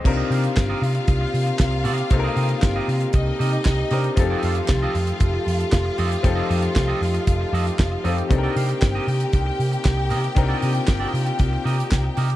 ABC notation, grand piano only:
X:1
M:4/4
L:1/8
Q:1/4=116
K:Cdor
V:1 name="Grand piano"
[C,CDEB]8 | [C,B,CEAB]6- [C,B,CEAB] [C,CDEB] | [F,CEGA]8 | [F,CEGA]6- [F,CEGA] [F,CEGA] |
[C,CDEAB]8 | [C,CDEB]8 |]